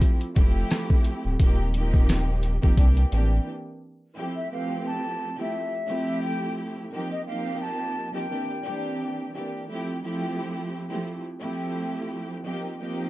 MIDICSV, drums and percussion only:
0, 0, Header, 1, 2, 480
1, 0, Start_track
1, 0, Key_signature, -1, "major"
1, 0, Tempo, 689655
1, 973, Time_signature, 4, 2, 24, 8
1, 9115, End_track
2, 0, Start_track
2, 0, Title_t, "Drums"
2, 10, Note_on_c, 9, 36, 93
2, 11, Note_on_c, 9, 42, 98
2, 80, Note_off_c, 9, 36, 0
2, 80, Note_off_c, 9, 42, 0
2, 145, Note_on_c, 9, 42, 59
2, 215, Note_off_c, 9, 42, 0
2, 252, Note_on_c, 9, 42, 77
2, 254, Note_on_c, 9, 36, 101
2, 322, Note_off_c, 9, 42, 0
2, 323, Note_off_c, 9, 36, 0
2, 492, Note_on_c, 9, 42, 93
2, 497, Note_on_c, 9, 37, 106
2, 497, Note_on_c, 9, 38, 127
2, 561, Note_off_c, 9, 42, 0
2, 567, Note_off_c, 9, 37, 0
2, 567, Note_off_c, 9, 38, 0
2, 627, Note_on_c, 9, 36, 93
2, 697, Note_off_c, 9, 36, 0
2, 728, Note_on_c, 9, 42, 81
2, 797, Note_off_c, 9, 42, 0
2, 971, Note_on_c, 9, 42, 88
2, 972, Note_on_c, 9, 36, 105
2, 1041, Note_off_c, 9, 36, 0
2, 1041, Note_off_c, 9, 42, 0
2, 1212, Note_on_c, 9, 42, 84
2, 1281, Note_off_c, 9, 42, 0
2, 1348, Note_on_c, 9, 36, 93
2, 1418, Note_off_c, 9, 36, 0
2, 1455, Note_on_c, 9, 42, 95
2, 1459, Note_on_c, 9, 37, 90
2, 1459, Note_on_c, 9, 38, 112
2, 1525, Note_off_c, 9, 42, 0
2, 1529, Note_off_c, 9, 37, 0
2, 1529, Note_off_c, 9, 38, 0
2, 1691, Note_on_c, 9, 42, 78
2, 1761, Note_off_c, 9, 42, 0
2, 1833, Note_on_c, 9, 36, 85
2, 1903, Note_off_c, 9, 36, 0
2, 1931, Note_on_c, 9, 36, 92
2, 1931, Note_on_c, 9, 42, 102
2, 2000, Note_off_c, 9, 36, 0
2, 2001, Note_off_c, 9, 42, 0
2, 2066, Note_on_c, 9, 42, 58
2, 2136, Note_off_c, 9, 42, 0
2, 2173, Note_on_c, 9, 42, 72
2, 2243, Note_off_c, 9, 42, 0
2, 9115, End_track
0, 0, End_of_file